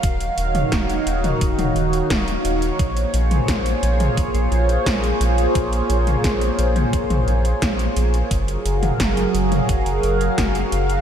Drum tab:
HH |xxxxxxxxxxxxxxxx|xxxxxxxxxxxxxxxx|xxxxxxxxxxxxxxxx|xxxxxxxxxxxxxxxx|
SD |----o-------o---|----o-------o---|----o-------o---|----o-------o---|
T2 |---o---o-o------|---o---o--------|---o---o-o------|---o---o--------|
BD |o---o---o---o---|o---o---o---o---|o---o---o---o---|o---o---o---o---|